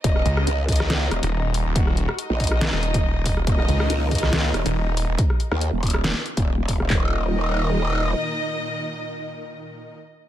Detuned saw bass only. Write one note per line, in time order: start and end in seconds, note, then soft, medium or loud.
0.26 0.46 C#2 loud
1.23 1.64 D#1 loud
1.66 2.07 D#1 loud
2.73 3.14 D#1 medium
3.16 3.46 D#1 medium
3.69 3.88 C#2 medium
4.66 5.07 D#1 loud
5.09 5.17 D#1 loud